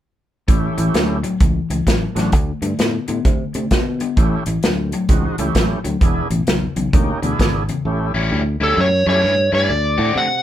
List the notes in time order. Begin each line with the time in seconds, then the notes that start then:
0.47 A1 A2 E3 A3 C#4 E4 G4, kick, closed hi-hat
0.78 A1 A2 E3, closed hi-hat
0.94 D2 A2 F#3, snare, closed hi-hat
1.23 A2 F#3, closed hi-hat
1.40 C#2 A2 E3, kick, closed hi-hat
1.70 C#2 A2 E3, closed hi-hat
1.87 A1 A2 F#3, kick, snare, closed hi-hat
2.15 A1 A2 F#3 A3 C4 D4 F#4, snare, closed hi-hat
2.32 D2 D3 A3, kick, closed hi-hat
2.62 G2 D3 A3, closed hi-hat
2.79 A2 D3 B3, snare, closed hi-hat
3.08 A2 D3 B3, closed hi-hat
3.25 C3 D3 A3, kick, closed hi-hat
3.54 C3 D3 A3, closed hi-hat
3.71 B2 D3 B3, kick, snare, closed hi-hat
4.00 D3 B3, closed hi-hat
4.16 A1 A2 E3 A3 C#4 E4 G4, kick, closed hi-hat
4.46 A1 A2 E3, closed hi-hat
4.63 D2 A2 F#3, snare, closed hi-hat
4.92 A2 F#3, closed hi-hat
5.09 C#2 A2 E3 G#3 C4 D#4 F#4, kick, closed hi-hat
5.38 C#2 A2 E3 A3 C#4 E4 G4, closed hi-hat
5.55 A1 A2 F#3, kick, snare, closed hi-hat
5.84 D2 A2 F#3, closed hi-hat
6.00 E1 E2 B2 B3 D4 E4 G#4, kick, closed hi-hat
6.30 A1 E2 B2, closed hi-hat
6.47 B1 E2 C#3, snare, closed hi-hat
6.76 B1 E2 C#3, closed hi-hat
6.93 D2 E2 B2 A#3 C#4 D#4 G4, kick, closed hi-hat
7.22 D2 E2 B2 B3 D4 E4 G#4, closed hi-hat
7.39 G#1 E2 C#3, kick, snare, closed hi-hat
7.69 E2 C#3, closed hi-hat
7.85 A1 A3 C#4 E4 G4
8.14 A1 A2 G3 C#4 E4
8.31 D2
8.60 D2 A2 G3 C#4 E4 A4
8.77 F#2 C#5
9.06 F#2 A2 G3 A3 C#4 E4 G4 C#5
9.24 G2
9.52 G2 A2 G3 C#4 E4 D5
9.69 D2
9.98 A2 D3 A3 C4 F#4
10.16 C3 F#5